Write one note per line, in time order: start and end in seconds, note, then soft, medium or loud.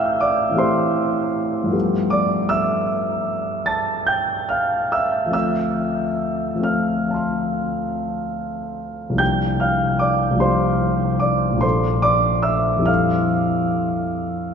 0.00 0.48 A2 soft
0.00 0.49 E3 soft
0.00 0.51 A3 soft
0.00 0.52 C4 soft
0.00 0.53 G4 soft
0.00 0.22 D5 medium
0.00 1.77 E5 medium
0.00 1.77 F5 medium
0.00 1.76 G5 medium
0.00 0.21 D6 medium
0.00 1.77 E6 medium
0.00 1.76 F6 medium
0.00 1.77 G6 medium
0.21 0.57 D5 medium
0.21 0.59 D6 medium
0.49 1.66 A2 soft
0.49 1.67 E3 soft
0.49 1.67 A3 soft
0.55 1.69 C4 soft
0.55 1.70 G4 soft
0.55 1.70 C5 medium
0.55 1.74 C6 medium
1.64 5.24 G2 soft
1.64 5.25 F3 soft
1.68 5.27 A3 soft
1.68 5.27 B3 soft
1.73 5.29 G4 soft
2.10 2.48 D5 medium
2.10 2.50 D6 medium
2.49 3.63 E5 medium
2.49 3.66 E6 medium
3.66 4.05 A5 medium
3.66 4.07 A6 medium
4.07 4.46 G5 medium
4.07 4.48 G6 medium
4.49 4.88 F5 medium
4.49 4.90 F6 medium
4.92 5.32 E5 soft
4.92 5.32 E6 medium
5.24 6.53 D2 soft
5.24 6.54 F3 soft
5.29 6.57 A3 soft
5.29 6.59 C4 soft
5.29 6.65 E6 medium
5.34 6.61 F4 soft
5.34 6.62 E5 soft
6.54 9.11 D2 soft
6.54 9.09 F3 soft
6.54 9.13 A3 soft
6.61 9.14 C4 soft
6.61 9.15 F4 soft
6.61 7.07 F5 soft
6.61 7.15 F6 medium
7.08 9.16 F5 soft
7.08 9.18 A5 soft
7.14 9.19 C6 soft
7.14 9.20 F6 soft
9.10 10.29 C2 soft
9.10 10.31 F3 soft
9.14 10.34 A#3 soft
9.14 10.36 D4 soft
9.18 10.38 G4 soft
9.18 9.58 G5 medium
9.18 9.61 G6 medium
9.60 9.99 F5 soft
9.60 10.01 F6 medium
9.99 10.39 D5 soft
9.99 10.41 D6 medium
10.31 11.54 C2 soft
10.31 11.53 F3 soft
10.35 11.55 A#3 soft
10.35 11.57 D4 soft
10.40 11.58 G4 soft
10.40 11.18 C5 medium
10.40 11.22 C6 medium
11.20 11.60 D5 soft
11.20 11.62 D6 medium
11.52 12.78 A#1 soft
11.52 12.80 F3 soft
11.56 12.81 A#3 soft
11.56 12.82 D4 soft
11.61 12.83 A4 soft
11.61 12.01 C5 soft
11.61 12.03 C6 medium
12.02 12.42 D5 medium
12.02 12.45 D6 medium
12.43 12.84 E5 medium
12.43 12.86 E6 medium
12.77 14.54 F2 soft
12.77 14.54 G3 soft
12.77 14.54 C4 soft
12.82 14.54 E4 soft
12.82 14.54 A4 soft
12.82 14.54 F6 medium
12.87 14.54 F5 soft